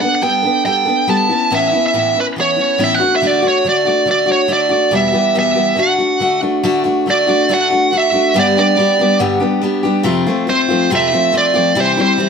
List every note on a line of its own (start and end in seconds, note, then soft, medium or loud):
0.01 0.21 B3 soft
0.01 0.21 D4 soft
0.01 0.22 A4 soft
0.01 0.14 F#5 medium
0.15 0.22 F#5 medium
0.21 0.43 G3 medium
0.21 0.44 B3 medium
0.21 0.43 D4 medium
0.21 0.42 A4 medium
0.21 0.62 G5 medium
0.43 0.65 B3 soft
0.43 0.65 D4 soft
0.43 0.65 A4 soft
0.65 0.86 G3 medium
0.65 0.87 B3 soft
0.65 0.86 D4 medium
0.65 0.84 A4 medium
0.65 1.10 G5 medium
0.86 1.07 B3 soft
0.86 1.07 D4 soft
0.86 1.07 A4 soft
1.07 1.29 G3 medium
1.07 1.30 B3 medium
1.07 1.30 D4 medium
1.07 1.29 A4 medium
1.07 1.53 A5 medium
1.29 1.51 B3 soft
1.29 1.51 C#4 soft
1.29 1.51 E4 soft
1.50 1.72 A2 medium
1.50 1.73 E3 medium
1.50 1.73 B3 medium
1.50 1.73 C#4 medium
1.50 1.71 E4 medium
1.55 1.85 E5 medium
1.72 1.93 B3 soft
1.72 1.94 C#4 soft
1.72 1.94 E4 soft
1.86 2.18 E5 medium
1.93 2.15 A2 medium
1.93 2.15 E3 medium
1.93 2.15 B3 medium
1.93 2.15 C#4 medium
1.93 2.13 E4 medium
2.14 2.37 B3 soft
2.14 2.37 C#4 soft
2.14 2.36 E4 soft
2.20 2.26 B4 medium
2.36 2.58 E3 soft
2.36 2.58 B3 medium
2.36 2.57 C#4 medium
2.36 2.55 E4 medium
2.41 2.83 C#5 medium
2.57 2.78 B3 soft
2.57 2.79 C#4 soft
2.57 2.79 E4 soft
2.78 3.00 A2 medium
2.78 3.01 E3 medium
2.78 3.01 B3 medium
2.78 3.01 C#4 medium
2.78 2.99 E4 medium
2.84 2.95 E5 medium
2.95 3.14 F#5 medium
3.00 3.21 A3 soft
3.00 3.22 D4 soft
3.00 3.22 F#4 medium
3.16 3.27 E5 medium
3.22 3.44 D3 medium
3.22 3.44 A3 medium
3.22 3.42 D4 medium
3.22 3.41 F#4 medium
3.27 3.46 D5 medium
3.42 3.64 A3 soft
3.42 3.64 D4 soft
3.42 3.65 F#4 medium
3.48 3.66 C#5 medium
3.65 3.86 D3 medium
3.65 3.87 A3 medium
3.65 3.85 D4 medium
3.65 3.84 F#4 medium
3.69 4.07 D5 medium
3.85 4.06 A3 soft
3.85 4.06 D4 soft
3.85 4.07 F#4 soft
4.05 4.28 D3 medium
4.05 4.28 A3 medium
4.05 4.26 D4 medium
4.05 4.25 F#4 medium
4.11 4.30 D5 medium
4.26 4.47 A3 soft
4.26 4.48 D4 soft
4.26 4.48 F#4 soft
4.32 4.53 C#5 medium
4.48 4.71 D3 medium
4.48 4.71 A3 medium
4.48 4.69 D4 medium
4.48 4.68 F#4 medium
4.53 4.92 D5 medium
4.69 4.92 A3 soft
4.69 4.93 D4 soft
4.69 4.92 F#4 medium
4.91 5.14 E2 medium
4.91 5.14 B2 medium
4.91 5.14 E3 medium
4.91 5.13 G3 medium
4.91 5.12 B3 medium
4.91 5.11 G4 medium
4.95 5.35 E5 medium
5.12 5.34 E3 soft
5.12 5.34 G3 soft
5.12 5.36 B3 soft
5.12 5.35 G4 medium
5.34 5.57 E2 medium
5.34 5.58 B2 medium
5.34 5.57 E3 medium
5.34 5.56 G3 medium
5.34 5.55 B3 medium
5.34 5.54 G4 medium
5.39 5.82 E5 medium
5.55 5.75 E3 soft
5.55 5.76 G3 soft
5.55 5.77 B3 soft
5.55 5.78 G4 soft
5.76 5.99 D3 medium
5.76 6.00 A3 medium
5.76 5.99 D4 medium
5.76 5.97 F#4 medium
5.76 6.40 F#5 medium
5.98 6.20 A3 soft
5.98 6.20 D4 soft
5.98 6.21 F#4 soft
6.20 6.43 D3 medium
6.20 6.42 A3 medium
6.20 6.41 D4 medium
6.20 6.40 F#4 medium
6.41 6.62 A3 soft
6.41 6.63 D4 medium
6.41 6.64 F#4 medium
6.63 6.86 D3 medium
6.63 6.86 A3 loud
6.63 6.84 D4 loud
6.63 6.83 F#4 loud
6.84 7.06 A3 medium
6.84 7.07 D4 medium
6.84 7.07 F#4 medium
7.06 7.28 D3 soft
7.06 7.29 A3 medium
7.06 7.27 D4 medium
7.06 7.26 F#4 medium
7.10 7.53 D5 medium
7.27 7.48 A3 soft
7.27 7.49 D4 medium
7.27 7.50 F#4 soft
7.49 7.71 D3 medium
7.49 7.72 A3 medium
7.49 7.71 D4 medium
7.49 7.69 F#4 medium
7.54 7.96 F#5 loud
7.70 7.91 A3 soft
7.70 7.92 D4 soft
7.70 7.93 F#4 medium
7.91 8.14 D3 medium
7.91 8.14 A3 medium
7.91 8.13 D4 medium
7.91 8.11 F#4 medium
7.98 8.39 E5 medium
8.12 8.35 A3 soft
8.12 8.35 D4 soft
8.12 8.35 F#4 medium
8.34 8.56 G2 medium
8.34 8.56 D3 medium
8.34 8.57 G3 medium
8.34 8.57 B3 medium
8.34 8.57 D4 medium
8.34 8.56 G4 medium
8.39 8.58 D5 medium
8.57 8.75 G3 soft
8.57 8.77 B3 medium
8.57 8.77 D4 medium
8.57 8.79 G4 medium
8.57 9.18 D5 medium
8.77 8.99 G3 medium
8.77 8.99 B3 medium
8.77 8.98 D4 medium
8.77 8.98 G4 medium
8.99 9.19 G3 soft
8.99 9.19 B3 soft
8.99 9.19 D4 soft
8.99 9.20 G4 medium
9.19 9.42 G2 medium
9.19 9.42 D3 medium
9.19 9.41 G3 loud
9.19 9.40 B3 medium
9.19 9.39 D4 medium
9.19 9.39 G4 medium
9.40 9.60 G3 medium
9.40 9.62 B3 medium
9.40 9.62 D4 medium
9.40 9.62 G4 medium
9.61 9.84 G3 medium
9.61 9.84 B3 medium
9.61 9.84 D4 medium
9.61 9.82 G4 medium
9.83 10.04 G3 medium
9.83 10.04 B3 soft
9.83 10.05 D4 medium
9.83 10.05 G4 medium
10.03 10.26 F2 loud
10.03 10.26 C3 medium
10.03 10.27 F3 medium
10.03 10.27 A3 loud
10.03 10.26 C4 medium
10.03 10.25 F4 loud
10.26 10.46 F3 medium
10.26 10.47 A3 medium
10.26 10.48 C4 medium
10.26 10.48 F4 medium
10.47 10.69 F3 medium
10.47 10.69 A3 medium
10.47 10.69 C4 medium
10.47 10.67 F4 medium
10.47 10.89 C5 loud
10.68 10.90 F3 soft
10.68 10.91 A3 medium
10.68 10.91 C4 medium
10.68 10.90 F4 medium
10.90 11.12 F2 medium
10.90 11.12 C3 medium
10.90 11.12 F3 medium
10.90 11.13 A3 medium
10.90 11.12 C4 loud
10.90 11.11 F4 medium
10.95 11.33 E5 loud
11.12 11.31 F3 soft
11.12 11.32 A3 soft
11.12 11.32 C4 medium
11.12 11.33 F4 medium
11.32 11.54 F3 medium
11.32 11.55 A3 medium
11.32 11.54 C4 medium
11.32 11.52 F4 medium
11.38 11.79 D5 medium
11.54 11.75 F3 soft
11.54 11.76 A3 soft
11.54 11.75 C4 medium
11.54 11.76 F4 medium
11.75 11.97 C3 medium
11.75 11.97 E3 medium
11.75 11.97 G3 medium
11.75 11.97 C4 medium
11.75 11.96 E4 medium
11.80 11.98 C5 medium
11.97 12.17 G3 medium
11.97 12.18 C4 medium
11.97 12.19 E4 medium
12.02 12.29 C5 medium
12.17 12.29 E3 medium
12.17 12.29 G3 medium
12.17 12.29 C4 medium
12.17 12.29 E4 medium